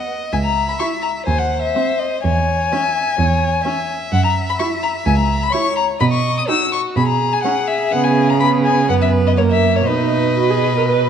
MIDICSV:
0, 0, Header, 1, 5, 480
1, 0, Start_track
1, 0, Key_signature, 5, "major"
1, 0, Tempo, 474308
1, 335, Time_signature, 4, 2, 24, 8
1, 8016, Tempo, 485044
1, 9456, Tempo, 502513
1, 11097, End_track
2, 0, Start_track
2, 0, Title_t, "Violin"
2, 0, Program_c, 0, 40
2, 331, Note_on_c, 0, 80, 65
2, 379, Note_off_c, 0, 80, 0
2, 449, Note_on_c, 0, 82, 55
2, 684, Note_off_c, 0, 82, 0
2, 691, Note_on_c, 0, 83, 50
2, 739, Note_off_c, 0, 83, 0
2, 801, Note_on_c, 0, 85, 59
2, 882, Note_off_c, 0, 85, 0
2, 1032, Note_on_c, 0, 82, 48
2, 1113, Note_off_c, 0, 82, 0
2, 1275, Note_on_c, 0, 80, 48
2, 1400, Note_on_c, 0, 78, 47
2, 1415, Note_off_c, 0, 80, 0
2, 1634, Note_off_c, 0, 78, 0
2, 1640, Note_on_c, 0, 76, 55
2, 2014, Note_on_c, 0, 75, 48
2, 2030, Note_off_c, 0, 76, 0
2, 2263, Note_off_c, 0, 75, 0
2, 2269, Note_on_c, 0, 80, 68
2, 3904, Note_off_c, 0, 80, 0
2, 4170, Note_on_c, 0, 78, 68
2, 4283, Note_off_c, 0, 78, 0
2, 4292, Note_on_c, 0, 82, 59
2, 4373, Note_off_c, 0, 82, 0
2, 4545, Note_on_c, 0, 83, 59
2, 4590, Note_off_c, 0, 83, 0
2, 4647, Note_on_c, 0, 85, 57
2, 4728, Note_off_c, 0, 85, 0
2, 4887, Note_on_c, 0, 82, 60
2, 4968, Note_off_c, 0, 82, 0
2, 5118, Note_on_c, 0, 80, 68
2, 5240, Note_off_c, 0, 80, 0
2, 5245, Note_on_c, 0, 82, 61
2, 5493, Note_on_c, 0, 83, 68
2, 5509, Note_off_c, 0, 82, 0
2, 5589, Note_on_c, 0, 85, 67
2, 5604, Note_off_c, 0, 83, 0
2, 5828, Note_off_c, 0, 85, 0
2, 5834, Note_on_c, 0, 82, 67
2, 5915, Note_off_c, 0, 82, 0
2, 6074, Note_on_c, 0, 83, 75
2, 6124, Note_off_c, 0, 83, 0
2, 6194, Note_on_c, 0, 85, 68
2, 6433, Note_off_c, 0, 85, 0
2, 6459, Note_on_c, 0, 87, 63
2, 6504, Note_off_c, 0, 87, 0
2, 6568, Note_on_c, 0, 88, 73
2, 6803, Note_off_c, 0, 88, 0
2, 6808, Note_on_c, 0, 85, 66
2, 6889, Note_off_c, 0, 85, 0
2, 7046, Note_on_c, 0, 83, 58
2, 7157, Note_off_c, 0, 83, 0
2, 7163, Note_on_c, 0, 82, 61
2, 7417, Note_on_c, 0, 80, 69
2, 7432, Note_off_c, 0, 82, 0
2, 7512, Note_off_c, 0, 80, 0
2, 7518, Note_on_c, 0, 78, 63
2, 7768, Note_on_c, 0, 76, 66
2, 7783, Note_off_c, 0, 78, 0
2, 8014, Note_on_c, 0, 78, 81
2, 8029, Note_off_c, 0, 76, 0
2, 8132, Note_on_c, 0, 80, 64
2, 8147, Note_off_c, 0, 78, 0
2, 8388, Note_on_c, 0, 82, 63
2, 8403, Note_off_c, 0, 80, 0
2, 8486, Note_off_c, 0, 82, 0
2, 8492, Note_on_c, 0, 83, 65
2, 8571, Note_off_c, 0, 83, 0
2, 8730, Note_on_c, 0, 80, 59
2, 8967, Note_off_c, 0, 80, 0
2, 8977, Note_on_c, 0, 78, 70
2, 9024, Note_off_c, 0, 78, 0
2, 9098, Note_on_c, 0, 76, 51
2, 9177, Note_off_c, 0, 76, 0
2, 9350, Note_on_c, 0, 75, 58
2, 9396, Note_off_c, 0, 75, 0
2, 9452, Note_on_c, 0, 73, 56
2, 9501, Note_off_c, 0, 73, 0
2, 9577, Note_on_c, 0, 76, 58
2, 9823, Note_on_c, 0, 73, 51
2, 9837, Note_off_c, 0, 76, 0
2, 9934, Note_on_c, 0, 71, 58
2, 9948, Note_off_c, 0, 73, 0
2, 11097, Note_off_c, 0, 71, 0
2, 11097, End_track
3, 0, Start_track
3, 0, Title_t, "Violin"
3, 0, Program_c, 1, 40
3, 0, Note_on_c, 1, 75, 50
3, 321, Note_on_c, 1, 76, 52
3, 336, Note_off_c, 1, 75, 0
3, 1281, Note_off_c, 1, 76, 0
3, 1287, Note_on_c, 1, 72, 49
3, 2248, Note_off_c, 1, 72, 0
3, 2256, Note_on_c, 1, 73, 52
3, 2749, Note_on_c, 1, 76, 45
3, 2764, Note_off_c, 1, 73, 0
3, 3222, Note_off_c, 1, 76, 0
3, 3229, Note_on_c, 1, 73, 52
3, 3692, Note_off_c, 1, 73, 0
3, 3697, Note_on_c, 1, 76, 57
3, 5568, Note_off_c, 1, 76, 0
3, 5596, Note_on_c, 1, 73, 52
3, 6069, Note_off_c, 1, 73, 0
3, 6077, Note_on_c, 1, 75, 61
3, 6557, Note_on_c, 1, 66, 50
3, 6572, Note_off_c, 1, 75, 0
3, 7048, Note_on_c, 1, 68, 57
3, 7063, Note_off_c, 1, 66, 0
3, 8973, Note_on_c, 1, 71, 51
3, 8988, Note_off_c, 1, 68, 0
3, 9471, Note_on_c, 1, 70, 48
3, 9485, Note_off_c, 1, 71, 0
3, 9932, Note_off_c, 1, 70, 0
3, 9937, Note_on_c, 1, 75, 54
3, 11097, Note_off_c, 1, 75, 0
3, 11097, End_track
4, 0, Start_track
4, 0, Title_t, "Viola"
4, 0, Program_c, 2, 41
4, 809, Note_on_c, 2, 64, 39
4, 890, Note_off_c, 2, 64, 0
4, 1772, Note_on_c, 2, 60, 38
4, 1853, Note_off_c, 2, 60, 0
4, 2755, Note_on_c, 2, 61, 41
4, 2836, Note_off_c, 2, 61, 0
4, 3696, Note_on_c, 2, 61, 37
4, 3777, Note_off_c, 2, 61, 0
4, 4651, Note_on_c, 2, 64, 48
4, 4732, Note_off_c, 2, 64, 0
4, 5603, Note_on_c, 2, 64, 43
4, 5684, Note_off_c, 2, 64, 0
4, 6563, Note_on_c, 2, 63, 45
4, 6644, Note_off_c, 2, 63, 0
4, 7537, Note_on_c, 2, 61, 43
4, 7618, Note_off_c, 2, 61, 0
4, 8028, Note_on_c, 2, 59, 55
4, 8468, Note_off_c, 2, 59, 0
4, 8499, Note_on_c, 2, 59, 54
4, 8966, Note_off_c, 2, 59, 0
4, 8978, Note_on_c, 2, 59, 45
4, 9456, Note_on_c, 2, 58, 40
4, 9470, Note_off_c, 2, 59, 0
4, 9930, Note_on_c, 2, 63, 43
4, 9944, Note_off_c, 2, 58, 0
4, 10363, Note_off_c, 2, 63, 0
4, 10411, Note_on_c, 2, 66, 54
4, 10533, Note_on_c, 2, 68, 49
4, 10547, Note_off_c, 2, 66, 0
4, 10774, Note_off_c, 2, 68, 0
4, 10788, Note_on_c, 2, 70, 50
4, 10833, Note_off_c, 2, 70, 0
4, 10895, Note_on_c, 2, 71, 52
4, 11097, Note_off_c, 2, 71, 0
4, 11097, End_track
5, 0, Start_track
5, 0, Title_t, "Cello"
5, 0, Program_c, 3, 42
5, 335, Note_on_c, 3, 37, 47
5, 711, Note_off_c, 3, 37, 0
5, 1288, Note_on_c, 3, 39, 49
5, 1667, Note_off_c, 3, 39, 0
5, 2267, Note_on_c, 3, 40, 50
5, 2652, Note_off_c, 3, 40, 0
5, 3224, Note_on_c, 3, 40, 56
5, 3599, Note_off_c, 3, 40, 0
5, 4170, Note_on_c, 3, 42, 57
5, 4550, Note_off_c, 3, 42, 0
5, 5123, Note_on_c, 3, 37, 65
5, 5503, Note_off_c, 3, 37, 0
5, 6081, Note_on_c, 3, 47, 64
5, 6461, Note_off_c, 3, 47, 0
5, 7043, Note_on_c, 3, 47, 65
5, 7428, Note_off_c, 3, 47, 0
5, 8020, Note_on_c, 3, 49, 52
5, 8972, Note_on_c, 3, 42, 50
5, 8987, Note_off_c, 3, 49, 0
5, 9925, Note_off_c, 3, 42, 0
5, 9931, Note_on_c, 3, 47, 44
5, 11097, Note_off_c, 3, 47, 0
5, 11097, End_track
0, 0, End_of_file